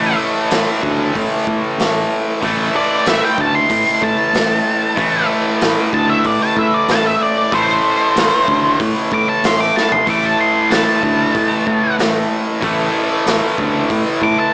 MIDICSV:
0, 0, Header, 1, 5, 480
1, 0, Start_track
1, 0, Key_signature, 0, "minor"
1, 0, Tempo, 637620
1, 1823, Time_signature, 4, 2, 24, 8
1, 10943, End_track
2, 0, Start_track
2, 0, Title_t, "Lead electric guitar"
2, 0, Program_c, 0, 29
2, 0, Note_on_c, 0, 81, 97
2, 121, Note_off_c, 0, 81, 0
2, 2078, Note_on_c, 0, 74, 97
2, 2303, Note_off_c, 0, 74, 0
2, 2318, Note_on_c, 0, 76, 83
2, 2427, Note_off_c, 0, 76, 0
2, 2443, Note_on_c, 0, 79, 92
2, 2566, Note_off_c, 0, 79, 0
2, 2566, Note_on_c, 0, 81, 98
2, 2671, Note_off_c, 0, 81, 0
2, 2673, Note_on_c, 0, 84, 85
2, 3017, Note_off_c, 0, 84, 0
2, 3038, Note_on_c, 0, 81, 102
2, 3962, Note_off_c, 0, 81, 0
2, 4472, Note_on_c, 0, 81, 107
2, 4584, Note_off_c, 0, 81, 0
2, 4590, Note_on_c, 0, 76, 106
2, 4714, Note_off_c, 0, 76, 0
2, 4714, Note_on_c, 0, 74, 92
2, 4825, Note_off_c, 0, 74, 0
2, 4836, Note_on_c, 0, 81, 110
2, 4946, Note_off_c, 0, 81, 0
2, 4957, Note_on_c, 0, 76, 92
2, 5075, Note_off_c, 0, 76, 0
2, 5075, Note_on_c, 0, 74, 92
2, 5186, Note_off_c, 0, 74, 0
2, 5205, Note_on_c, 0, 81, 106
2, 5311, Note_off_c, 0, 81, 0
2, 5320, Note_on_c, 0, 76, 90
2, 5429, Note_off_c, 0, 76, 0
2, 5440, Note_on_c, 0, 74, 97
2, 5665, Note_off_c, 0, 74, 0
2, 5679, Note_on_c, 0, 72, 95
2, 6604, Note_off_c, 0, 72, 0
2, 6880, Note_on_c, 0, 86, 104
2, 6989, Note_off_c, 0, 86, 0
2, 6995, Note_on_c, 0, 81, 101
2, 7115, Note_off_c, 0, 81, 0
2, 7115, Note_on_c, 0, 84, 96
2, 7230, Note_off_c, 0, 84, 0
2, 7230, Note_on_c, 0, 86, 99
2, 7344, Note_off_c, 0, 86, 0
2, 7349, Note_on_c, 0, 81, 98
2, 7464, Note_off_c, 0, 81, 0
2, 7468, Note_on_c, 0, 84, 76
2, 7583, Note_off_c, 0, 84, 0
2, 7603, Note_on_c, 0, 86, 96
2, 7711, Note_off_c, 0, 86, 0
2, 7718, Note_on_c, 0, 81, 97
2, 7828, Note_off_c, 0, 81, 0
2, 7833, Note_on_c, 0, 84, 88
2, 8062, Note_off_c, 0, 84, 0
2, 8067, Note_on_c, 0, 81, 97
2, 8997, Note_off_c, 0, 81, 0
2, 10716, Note_on_c, 0, 86, 97
2, 10826, Note_off_c, 0, 86, 0
2, 10836, Note_on_c, 0, 81, 88
2, 10943, Note_off_c, 0, 81, 0
2, 10943, End_track
3, 0, Start_track
3, 0, Title_t, "Overdriven electric guitar"
3, 0, Program_c, 1, 29
3, 0, Note_on_c, 1, 45, 97
3, 0, Note_on_c, 1, 52, 98
3, 0, Note_on_c, 1, 57, 96
3, 1809, Note_off_c, 1, 45, 0
3, 1812, Note_on_c, 1, 45, 82
3, 1822, Note_off_c, 1, 52, 0
3, 1825, Note_on_c, 1, 52, 91
3, 1833, Note_off_c, 1, 57, 0
3, 1836, Note_on_c, 1, 57, 100
3, 3726, Note_off_c, 1, 45, 0
3, 3729, Note_on_c, 1, 45, 92
3, 3739, Note_off_c, 1, 52, 0
3, 3742, Note_on_c, 1, 52, 95
3, 3747, Note_off_c, 1, 57, 0
3, 3750, Note_on_c, 1, 57, 102
3, 5655, Note_off_c, 1, 45, 0
3, 5658, Note_on_c, 1, 45, 97
3, 5666, Note_off_c, 1, 52, 0
3, 5669, Note_on_c, 1, 52, 90
3, 5673, Note_off_c, 1, 57, 0
3, 5676, Note_on_c, 1, 57, 106
3, 7571, Note_off_c, 1, 45, 0
3, 7574, Note_on_c, 1, 45, 85
3, 7582, Note_off_c, 1, 52, 0
3, 7585, Note_on_c, 1, 52, 97
3, 7594, Note_off_c, 1, 57, 0
3, 7597, Note_on_c, 1, 57, 97
3, 9487, Note_off_c, 1, 45, 0
3, 9490, Note_on_c, 1, 45, 89
3, 9500, Note_off_c, 1, 52, 0
3, 9503, Note_on_c, 1, 52, 91
3, 9510, Note_off_c, 1, 57, 0
3, 9513, Note_on_c, 1, 57, 104
3, 10943, Note_off_c, 1, 45, 0
3, 10943, Note_off_c, 1, 52, 0
3, 10943, Note_off_c, 1, 57, 0
3, 10943, End_track
4, 0, Start_track
4, 0, Title_t, "Picked electric bass"
4, 0, Program_c, 2, 34
4, 0, Note_on_c, 2, 33, 92
4, 101, Note_off_c, 2, 33, 0
4, 386, Note_on_c, 2, 33, 86
4, 483, Note_off_c, 2, 33, 0
4, 626, Note_on_c, 2, 38, 96
4, 819, Note_off_c, 2, 38, 0
4, 868, Note_on_c, 2, 45, 92
4, 963, Note_off_c, 2, 45, 0
4, 1107, Note_on_c, 2, 45, 83
4, 1203, Note_off_c, 2, 45, 0
4, 1342, Note_on_c, 2, 33, 95
4, 1537, Note_off_c, 2, 33, 0
4, 1827, Note_on_c, 2, 33, 96
4, 2020, Note_off_c, 2, 33, 0
4, 2308, Note_on_c, 2, 33, 95
4, 2403, Note_off_c, 2, 33, 0
4, 2544, Note_on_c, 2, 38, 87
4, 2738, Note_off_c, 2, 38, 0
4, 2787, Note_on_c, 2, 45, 91
4, 2883, Note_off_c, 2, 45, 0
4, 3022, Note_on_c, 2, 45, 82
4, 3120, Note_off_c, 2, 45, 0
4, 3263, Note_on_c, 2, 33, 99
4, 3458, Note_off_c, 2, 33, 0
4, 3743, Note_on_c, 2, 33, 91
4, 3938, Note_off_c, 2, 33, 0
4, 4229, Note_on_c, 2, 33, 88
4, 4324, Note_off_c, 2, 33, 0
4, 4463, Note_on_c, 2, 38, 93
4, 4659, Note_off_c, 2, 38, 0
4, 4705, Note_on_c, 2, 45, 89
4, 4802, Note_off_c, 2, 45, 0
4, 4943, Note_on_c, 2, 45, 85
4, 5041, Note_off_c, 2, 45, 0
4, 5183, Note_on_c, 2, 33, 97
4, 5378, Note_off_c, 2, 33, 0
4, 5666, Note_on_c, 2, 33, 101
4, 5860, Note_off_c, 2, 33, 0
4, 6142, Note_on_c, 2, 33, 90
4, 6241, Note_off_c, 2, 33, 0
4, 6383, Note_on_c, 2, 38, 94
4, 6579, Note_off_c, 2, 38, 0
4, 6625, Note_on_c, 2, 45, 88
4, 6722, Note_off_c, 2, 45, 0
4, 6863, Note_on_c, 2, 45, 85
4, 6962, Note_off_c, 2, 45, 0
4, 7103, Note_on_c, 2, 33, 92
4, 7299, Note_off_c, 2, 33, 0
4, 7581, Note_on_c, 2, 33, 91
4, 7778, Note_off_c, 2, 33, 0
4, 8058, Note_on_c, 2, 33, 92
4, 8158, Note_off_c, 2, 33, 0
4, 8303, Note_on_c, 2, 38, 89
4, 8499, Note_off_c, 2, 38, 0
4, 8543, Note_on_c, 2, 45, 91
4, 8641, Note_off_c, 2, 45, 0
4, 8784, Note_on_c, 2, 45, 85
4, 8882, Note_off_c, 2, 45, 0
4, 9024, Note_on_c, 2, 33, 97
4, 9219, Note_off_c, 2, 33, 0
4, 9504, Note_on_c, 2, 33, 97
4, 9699, Note_off_c, 2, 33, 0
4, 9984, Note_on_c, 2, 33, 93
4, 10082, Note_off_c, 2, 33, 0
4, 10226, Note_on_c, 2, 38, 96
4, 10420, Note_off_c, 2, 38, 0
4, 10465, Note_on_c, 2, 45, 87
4, 10561, Note_off_c, 2, 45, 0
4, 10703, Note_on_c, 2, 45, 89
4, 10800, Note_off_c, 2, 45, 0
4, 10943, End_track
5, 0, Start_track
5, 0, Title_t, "Drums"
5, 383, Note_on_c, 9, 46, 57
5, 392, Note_on_c, 9, 38, 110
5, 458, Note_off_c, 9, 46, 0
5, 468, Note_off_c, 9, 38, 0
5, 627, Note_on_c, 9, 36, 79
5, 703, Note_off_c, 9, 36, 0
5, 869, Note_on_c, 9, 36, 101
5, 870, Note_on_c, 9, 46, 53
5, 944, Note_off_c, 9, 36, 0
5, 946, Note_off_c, 9, 46, 0
5, 1107, Note_on_c, 9, 36, 89
5, 1183, Note_off_c, 9, 36, 0
5, 1351, Note_on_c, 9, 46, 56
5, 1361, Note_on_c, 9, 38, 102
5, 1426, Note_off_c, 9, 46, 0
5, 1436, Note_off_c, 9, 38, 0
5, 1825, Note_on_c, 9, 36, 115
5, 1825, Note_on_c, 9, 46, 56
5, 1900, Note_off_c, 9, 46, 0
5, 1901, Note_off_c, 9, 36, 0
5, 2304, Note_on_c, 9, 46, 60
5, 2314, Note_on_c, 9, 38, 112
5, 2380, Note_off_c, 9, 46, 0
5, 2389, Note_off_c, 9, 38, 0
5, 2545, Note_on_c, 9, 36, 78
5, 2620, Note_off_c, 9, 36, 0
5, 2783, Note_on_c, 9, 46, 62
5, 2785, Note_on_c, 9, 36, 106
5, 2858, Note_off_c, 9, 46, 0
5, 2860, Note_off_c, 9, 36, 0
5, 3025, Note_on_c, 9, 36, 85
5, 3100, Note_off_c, 9, 36, 0
5, 3270, Note_on_c, 9, 46, 60
5, 3280, Note_on_c, 9, 38, 112
5, 3345, Note_off_c, 9, 46, 0
5, 3355, Note_off_c, 9, 38, 0
5, 3744, Note_on_c, 9, 36, 112
5, 3748, Note_on_c, 9, 46, 59
5, 3820, Note_off_c, 9, 36, 0
5, 3823, Note_off_c, 9, 46, 0
5, 4224, Note_on_c, 9, 46, 62
5, 4234, Note_on_c, 9, 38, 117
5, 4299, Note_off_c, 9, 46, 0
5, 4309, Note_off_c, 9, 38, 0
5, 4463, Note_on_c, 9, 36, 81
5, 4539, Note_off_c, 9, 36, 0
5, 4701, Note_on_c, 9, 46, 52
5, 4703, Note_on_c, 9, 36, 104
5, 4777, Note_off_c, 9, 46, 0
5, 4778, Note_off_c, 9, 36, 0
5, 4944, Note_on_c, 9, 36, 93
5, 5019, Note_off_c, 9, 36, 0
5, 5182, Note_on_c, 9, 46, 56
5, 5192, Note_on_c, 9, 38, 111
5, 5258, Note_off_c, 9, 46, 0
5, 5267, Note_off_c, 9, 38, 0
5, 5663, Note_on_c, 9, 36, 110
5, 5665, Note_on_c, 9, 46, 53
5, 5739, Note_off_c, 9, 36, 0
5, 5741, Note_off_c, 9, 46, 0
5, 6147, Note_on_c, 9, 46, 61
5, 6157, Note_on_c, 9, 38, 109
5, 6222, Note_off_c, 9, 46, 0
5, 6232, Note_off_c, 9, 38, 0
5, 6384, Note_on_c, 9, 36, 77
5, 6459, Note_off_c, 9, 36, 0
5, 6624, Note_on_c, 9, 36, 110
5, 6626, Note_on_c, 9, 46, 56
5, 6699, Note_off_c, 9, 36, 0
5, 6701, Note_off_c, 9, 46, 0
5, 6863, Note_on_c, 9, 36, 89
5, 6939, Note_off_c, 9, 36, 0
5, 7105, Note_on_c, 9, 46, 63
5, 7115, Note_on_c, 9, 38, 113
5, 7180, Note_off_c, 9, 46, 0
5, 7190, Note_off_c, 9, 38, 0
5, 7356, Note_on_c, 9, 38, 69
5, 7431, Note_off_c, 9, 38, 0
5, 7467, Note_on_c, 9, 43, 85
5, 7542, Note_off_c, 9, 43, 0
5, 7582, Note_on_c, 9, 36, 106
5, 7582, Note_on_c, 9, 46, 60
5, 7657, Note_off_c, 9, 46, 0
5, 7658, Note_off_c, 9, 36, 0
5, 8062, Note_on_c, 9, 46, 63
5, 8071, Note_on_c, 9, 38, 114
5, 8137, Note_off_c, 9, 46, 0
5, 8147, Note_off_c, 9, 38, 0
5, 8303, Note_on_c, 9, 36, 78
5, 8379, Note_off_c, 9, 36, 0
5, 8542, Note_on_c, 9, 46, 54
5, 8544, Note_on_c, 9, 36, 114
5, 8617, Note_off_c, 9, 46, 0
5, 8619, Note_off_c, 9, 36, 0
5, 8784, Note_on_c, 9, 36, 86
5, 8860, Note_off_c, 9, 36, 0
5, 9027, Note_on_c, 9, 46, 54
5, 9037, Note_on_c, 9, 38, 110
5, 9102, Note_off_c, 9, 46, 0
5, 9112, Note_off_c, 9, 38, 0
5, 9504, Note_on_c, 9, 36, 107
5, 9506, Note_on_c, 9, 46, 55
5, 9579, Note_off_c, 9, 36, 0
5, 9582, Note_off_c, 9, 46, 0
5, 9987, Note_on_c, 9, 46, 58
5, 9997, Note_on_c, 9, 38, 111
5, 10062, Note_off_c, 9, 46, 0
5, 10072, Note_off_c, 9, 38, 0
5, 10225, Note_on_c, 9, 36, 78
5, 10300, Note_off_c, 9, 36, 0
5, 10464, Note_on_c, 9, 36, 108
5, 10469, Note_on_c, 9, 46, 54
5, 10539, Note_off_c, 9, 36, 0
5, 10544, Note_off_c, 9, 46, 0
5, 10702, Note_on_c, 9, 36, 88
5, 10777, Note_off_c, 9, 36, 0
5, 10943, End_track
0, 0, End_of_file